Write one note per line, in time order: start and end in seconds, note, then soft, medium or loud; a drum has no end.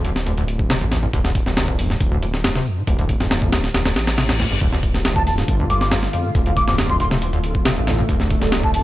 0.00 0.83 D1 medium
0.05 0.11 D2 loud
0.05 closed hi-hat medium
0.05 tambourine medium
0.16 snare medium
0.16 tambourine soft
0.26 0.33 D2 medium
0.26 closed hi-hat medium
0.26 tambourine soft
0.38 0.44 D2 loud
0.38 closed hi-hat soft
0.38 tambourine soft
0.48 closed hi-hat medium
0.48 tambourine medium
0.59 kick medium
0.59 tambourine soft
0.70 0.76 C3 medium
0.70 snare loud
0.70 closed hi-hat medium
0.70 tambourine soft
0.81 1.08 A1 medium
0.81 0.85 D2 loud
0.81 closed hi-hat soft
0.81 tambourine soft
0.92 0.98 D2 medium
0.92 snare medium
0.92 closed hi-hat medium
0.92 tambourine medium
1.03 1.06 F2 medium
1.03 tambourine soft
1.13 1.40 D1 medium
1.13 1.20 D2 loud
1.13 kick loud
1.13 closed hi-hat medium
1.13 tambourine soft
1.25 1.30 D2 loud
1.25 snare soft
1.25 tambourine soft
1.35 kick medium
1.35 closed hi-hat medium
1.35 tambourine medium
1.46 1.95 D1 medium
1.46 1.50 C2 medium
1.46 snare soft
1.46 tambourine soft
1.57 1.66 C2 loud
1.57 snare loud
1.57 closed hi-hat medium
1.57 tambourine soft
1.68 1.80 D2 medium
1.68 kick medium
1.68 tambourine soft
1.79 1.91 F2 medium
1.79 open hi-hat medium
1.79 tambourine medium
1.90 1.96 A2 medium
1.90 snare soft
1.90 tambourine soft
2.00 2.60 D1 medium
2.00 kick loud
2.00 closed hi-hat medium
2.00 tambourine soft
2.11 2.17 D2 loud
2.11 tambourine soft
2.22 2.26 D2 medium
2.22 closed hi-hat medium
2.22 tambourine medium
2.34 snare soft
2.34 tambourine soft
2.44 2.50 F2 medium
2.44 snare loud
2.44 closed hi-hat medium
2.44 tambourine soft
2.55 2.68 C3 medium
2.55 snare soft
2.55 tambourine soft
2.66 2.79 F2 medium
2.66 tambourine medium
2.77 2.83 A2 medium
2.77 tambourine soft
2.87 3.14 D1 medium
2.87 2.94 D2 medium
2.87 kick loud
2.87 closed hi-hat medium
2.87 tambourine soft
2.99 3.05 D2 loud
2.99 closed hi-hat soft
2.99 tambourine soft
3.09 kick medium
3.09 closed hi-hat medium
3.09 tambourine medium
3.20 3.69 D1 medium
3.20 3.26 F2 medium
3.20 snare soft
3.20 tambourine soft
3.31 3.37 F2 medium
3.31 snare loud
3.31 closed hi-hat medium
3.31 tambourine soft
3.42 3.51 F2 medium
3.42 kick medium
3.42 tambourine soft
3.52 3.59 D2 loud
3.52 snare loud
3.52 closed hi-hat medium
3.52 tambourine medium
3.64 snare soft
3.64 tambourine soft
3.74 3.95 D1 loud
3.74 3.81 D2 medium
3.74 snare loud
3.74 closed hi-hat medium
3.74 tambourine soft
3.74 reverse cymbal medium
3.85 3.91 D2 loud
3.85 snare loud
3.85 closed hi-hat medium
3.85 tambourine soft
3.96 4.45 A1 loud
3.96 snare loud
3.96 closed hi-hat medium
3.96 tambourine medium
4.07 snare loud
4.07 closed hi-hat medium
4.07 tambourine soft
4.17 4.24 C3 medium
4.17 snare loud
4.17 closed hi-hat medium
4.17 tambourine soft
4.29 4.32 D2 loud
4.29 snare loud
4.29 closed hi-hat medium
4.29 tambourine soft
4.39 4.46 D2 medium
4.39 snare medium
4.39 closed hi-hat medium
4.39 tambourine medium
4.51 4.58 G1 loud
4.51 4.54 F2 medium
4.51 tambourine soft
4.61 5.43 D1 medium
4.61 4.67 D2 loud
4.61 8.83 D3 medium
4.61 8.83 A3 medium
4.61 8.08 F4 medium
4.61 kick loud
4.61 closed hi-hat medium
4.61 tambourine soft
4.72 4.78 D2 loud
4.72 snare soft
4.72 tambourine soft
4.83 kick medium
4.83 closed hi-hat medium
4.83 tambourine medium
4.94 4.98 C2 medium
4.94 snare soft
4.94 tambourine soft
5.05 5.14 C2 loud
5.05 snare loud
5.05 closed hi-hat medium
5.05 tambourine soft
5.16 5.28 D2 medium
5.16 5.23 A5 medium
5.16 kick medium
5.16 tambourine soft
5.27 5.39 F2 medium
5.27 5.34 A5 medium
5.27 open hi-hat medium
5.27 tambourine medium
5.38 5.43 A2 medium
5.38 snare soft
5.38 tambourine soft
5.48 6.08 G1 loud
5.48 kick loud
5.48 closed hi-hat medium
5.48 tambourine soft
5.59 5.65 D2 loud
5.59 tambourine soft
5.70 5.74 D2 medium
5.70 5.77 D6 medium
5.70 closed hi-hat medium
5.70 tambourine medium
5.81 5.88 D6 medium
5.81 snare soft
5.81 tambourine soft
5.92 5.98 F2 medium
5.92 snare loud
5.92 closed hi-hat medium
5.92 tambourine soft
6.03 snare soft
6.03 tambourine soft
6.13 6.26 F2 medium
6.13 closed hi-hat medium
6.13 tambourine medium
6.25 6.30 A2 medium
6.25 tambourine soft
6.35 6.62 D1 loud
6.35 6.41 D2 medium
6.35 kick loud
6.35 closed hi-hat medium
6.35 tambourine soft
6.46 6.52 D2 loud
6.46 closed hi-hat soft
6.46 tambourine soft
6.57 6.64 D6 medium
6.57 kick medium
6.57 closed hi-hat medium
6.57 tambourine medium
6.68 7.78 D1 medium
6.68 6.74 F2 medium
6.68 6.75 D6 medium
6.68 snare soft
6.68 tambourine soft
6.78 6.85 F2 medium
6.78 snare loud
6.78 closed hi-hat medium
6.78 tambourine soft
6.90 6.99 F2 medium
6.90 6.97 C6 medium
6.90 kick medium
6.90 tambourine soft
7.00 7.06 D2 loud
7.00 7.08 C6 medium
7.00 closed hi-hat medium
7.00 tambourine medium
7.11 7.17 C3 medium
7.11 snare medium
7.11 tambourine soft
7.22 7.28 D2 medium
7.22 closed hi-hat medium
7.22 tambourine soft
7.33 7.39 D2 loud
7.33 closed hi-hat soft
7.33 tambourine soft
7.44 closed hi-hat medium
7.44 tambourine medium
7.55 kick medium
7.55 tambourine soft
7.65 7.72 C3 medium
7.65 snare loud
7.65 closed hi-hat medium
7.65 tambourine soft
7.76 8.03 A1 medium
7.76 7.80 D2 loud
7.76 closed hi-hat soft
7.76 tambourine soft
7.87 7.94 D2 medium
7.87 snare medium
7.87 closed hi-hat medium
7.87 tambourine medium
7.98 8.02 F2 medium
7.98 tambourine soft
8.09 8.36 D1 loud
8.09 8.15 D2 loud
8.09 8.83 D4 loud
8.09 kick loud
8.09 closed hi-hat medium
8.09 tambourine soft
8.20 8.26 D2 loud
8.20 snare soft
8.20 tambourine soft
8.30 kick medium
8.30 closed hi-hat medium
8.30 tambourine medium
8.42 8.83 D1 medium
8.42 8.46 C2 medium
8.42 snare soft
8.42 tambourine soft
8.52 8.62 C2 loud
8.52 snare loud
8.52 closed hi-hat medium
8.52 tambourine soft
8.64 8.76 D2 medium
8.64 8.71 A5 medium
8.64 kick medium
8.64 tambourine soft
8.74 8.83 F2 medium
8.74 8.82 A5 medium
8.74 open hi-hat medium
8.74 tambourine medium